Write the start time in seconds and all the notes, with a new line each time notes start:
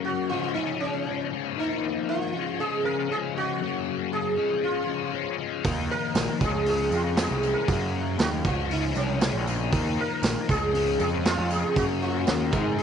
Already playing: F#2 C#3 F#3 A#3 C#4
0.05 F#4
0.29 F3 G#3 C#4 F4
0.34 C#3
0.54 C#3 F3 D#4
0.58 G#3 C#4
0.80 G#3 C#4
0.85 F3
1.07 C#3 F3 G#3 C#4
1.32 F3 G#3 C#4
1.57 D#3 F3 A#3 D#4
2.09 F4
2.33 C#3 F3 G#3 C#4
2.59 C#3 F3 G#3 C#4 G#4
2.84 F3 G#3 C#4 A#4
3.10 C#3 F3 G#3 C#4 G#4
3.35 F3 G#3 C#4 F#4
3.61 F#2 C#3 F#3 A#3 C#4
4.13 G#4
4.37 C#3 F3 G#3 C#4
4.62 C#3 F3 G#3 C#4 F4
4.88 F3 G#3 C#4
5.13 C#3 F3 G#3 C#4
5.39 F3 G#3 C#4
5.64 D#2 D#3 F3 A#3 D#4, kick, open hi-hat, tambourine
5.91 A#4
6.15 A#1, snare, open hi-hat, tambourine
6.40 C#2 C#3 F3 G#3 C#4 G#4, kick, tambourine
6.66 C#3 F3 G#3 C#4 G#4, open hi-hat
6.91 F2 F3 G#3 C#4 F4, tambourine
7.17 C#3 F3 G#3 C#4, snare, open hi-hat, tambourine
7.21 G#4
7.30 C2
7.41 F3 G#3 C#4, tambourine
7.54 A#4
7.67 F#2 C#3 F#3 A#3 C#4, kick, open hi-hat, tambourine
8.19 D#2 F#4, snare, open hi-hat, tambourine
8.44 C#2 C#3 F3 G#3 C#4 F4, kick, tambourine
8.70 C#3 F3 G#3 C#4 D#4, open hi-hat
8.94 C2 F3 G#3 C#4, tambourine
9.20 C#3 F3 G#3 C#4, snare, open hi-hat, tambourine
9.33 A#1
9.46 F3 G#3 C#4, tambourine
9.72 D#2 D#3 F3 A#3 D#4, kick, open hi-hat, tambourine
10.01 A#4
10.23 A#1, snare, open hi-hat, tambourine
10.48 C#2 C#3 F3 G#3 C#4 G#4, kick, tambourine
10.74 C#3 F3 G#3 C#4, open hi-hat
10.99 F2 F3 G#3 C#4 G#4, tambourine
11.24 C#3 F3 G#3 C#4 F4, snare, open hi-hat, tambourine
11.38 F2
11.49 F3 G#3 C#4 G#4, tambourine
11.75 F#2 C#3 F#3 A#3 C#4 F#4, kick, open hi-hat, tambourine
12.02 F4, tambourine
12.27 D#2, snare, open hi-hat, tambourine
12.52 G#2 D#3 G#3 C4 D#4, kick, tambourine
12.77 G#2 D#3 G#3 C4 G#4, open hi-hat